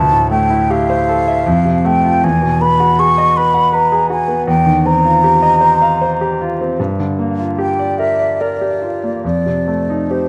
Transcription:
0.00 1.43 D2 medium
0.00 0.30 A5 medium
0.12 0.43 A2 soft
0.31 0.62 A3 soft
0.31 0.72 G5 medium
0.50 0.81 E4 soft
0.70 1.01 G4 soft
0.70 1.88 F5 medium
0.90 1.20 C5 soft
1.09 1.40 A4 soft
1.28 1.47 E5 soft
1.46 2.21 F2 medium
1.65 1.97 C3 soft
1.85 2.16 A3 soft
1.85 2.25 G5 medium
2.03 2.23 F4 soft
2.23 4.44 E2 medium
2.23 2.63 G#5 medium
2.42 2.73 B2 soft
2.61 2.92 B3 soft
2.61 3.01 B5 medium
2.80 3.11 F#4 soft
2.99 3.29 G#4 soft
2.99 3.38 C#6 medium
3.18 3.48 D#5 soft
3.37 3.67 B4 soft
3.37 3.76 B5 medium
3.54 3.85 F#5 soft
3.72 4.03 B4 soft
3.72 4.10 A#5 medium
3.92 4.22 G#4 soft
4.10 4.40 F#4 soft
4.10 4.47 G#5 medium
4.28 4.47 B3 soft
4.47 6.74 E2 medium
4.47 4.88 G5 medium
4.66 4.97 D#3 soft
4.86 5.16 C4 soft
4.86 6.40 A#5 medium
5.05 5.35 F4 soft
5.24 5.54 G4 soft
5.42 5.73 D#5 soft
5.61 5.92 C5 soft
5.81 6.12 F5 soft
6.02 6.32 C5 soft
6.21 6.52 G4 soft
6.41 6.72 F4 soft
6.61 6.80 C4 soft
6.80 9.20 G2 soft
7.00 7.30 D3 soft
7.19 7.50 A#3 soft
7.39 7.70 F4 soft
7.58 7.90 G4 soft
7.58 8.00 G5 medium
7.79 8.11 D5 soft
7.98 8.31 A#4 soft
7.98 8.43 E5 medium
8.19 8.52 D5 soft
8.41 8.73 A#4 soft
8.41 9.24 D5 medium
8.61 8.94 G4 soft
8.82 9.15 F4 soft
9.03 9.24 A#3 soft
9.24 10.29 F2 soft
9.24 10.12 D5 medium
9.46 9.80 C3 soft
9.68 10.02 A3 soft
9.90 10.24 D#4 soft
10.11 10.29 G4 soft
10.11 10.29 C5 medium

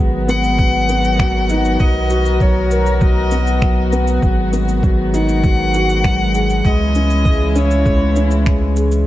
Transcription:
0.00 1.77 G#1 medium
0.00 4.18 D#3 medium
0.00 0.15 F#3 medium
0.00 6.61 F#3 medium
0.00 1.76 G#3 medium
0.00 0.28 B3 medium
0.00 9.03 B3 medium
0.00 6.61 F#4 medium
0.28 0.46 B3 loud
0.28 1.82 F#5 loud
0.28 shaker medium
0.44 shaker soft
0.58 0.87 F#3 medium
0.58 kick loud
0.58 shaker soft
0.89 1.06 B3 medium
0.89 shaker medium
1.04 shaker soft
1.19 1.48 F#3 loud
1.19 finger snap medium
1.19 kick loud
1.19 shaker soft
1.49 1.78 D#4 loud
1.49 shaker medium
1.65 shaker soft
1.80 4.19 B1 medium
1.80 2.09 F#3 medium
1.80 4.20 A#4 medium
1.80 2.43 D#5 loud
1.80 kick medium
1.80 shaker soft
2.10 2.39 F#4 loud
2.10 shaker medium
2.26 shaker soft
2.40 2.69 F#3 medium
2.40 3.03 C#5 medium
2.40 kick medium
2.40 shaker soft
2.71 3.00 A#4 medium
2.71 shaker medium
2.86 shaker soft
3.01 3.19 F#3 medium
3.01 3.92 D#5 medium
3.01 kick loud
3.01 shaker soft
3.31 3.60 B3 medium
3.31 shaker medium
3.47 shaker soft
3.62 3.79 F#3 medium
3.62 finger snap medium
3.62 kick loud
3.62 shaker soft
3.92 4.09 B3 medium
3.92 shaker medium
4.08 shaker soft
4.22 6.62 G#1 medium
4.22 6.62 D#3 medium
4.22 4.51 F#3 medium
4.22 9.07 G#3 medium
4.22 kick medium
4.22 shaker soft
4.53 4.70 B3 medium
4.53 shaker medium
4.68 shaker soft
4.83 5.12 F#3 loud
4.83 kick medium
4.83 shaker soft
5.14 5.42 D#4 loud
5.14 6.68 F#5 loud
5.14 shaker medium
5.29 shaker soft
5.44 5.73 F#3 medium
5.44 kick medium
5.44 shaker soft
5.74 6.03 F#4 loud
5.74 shaker medium
5.89 shaker soft
6.04 6.33 F#3 medium
6.04 finger snap medium
6.04 kick loud
6.04 shaker soft
6.35 6.63 G#4 medium
6.35 shaker medium
6.50 shaker soft
6.64 9.04 C#2 medium
6.64 9.05 C#3 medium
6.64 9.05 E3 medium
6.64 6.82 G#3 medium
6.64 9.05 E4 medium
6.64 7.59 D#5 loud
6.64 kick loud
6.64 shaker soft
6.95 7.24 C#4 medium
6.95 shaker medium
7.10 shaker soft
7.25 7.43 G#3 medium
7.25 kick loud
7.25 shaker soft
7.55 7.73 C#4 loud
7.55 8.47 C#5 medium
7.55 shaker medium
7.71 shaker soft
7.86 8.15 G#3 medium
7.86 kick loud
7.86 shaker soft
8.16 8.45 C#4 medium
8.16 shaker medium
8.31 shaker soft
8.46 8.64 G#3 medium
8.46 finger snap medium
8.46 kick loud
8.46 shaker soft
8.76 8.94 G#4 medium
8.76 shaker medium
8.92 shaker soft

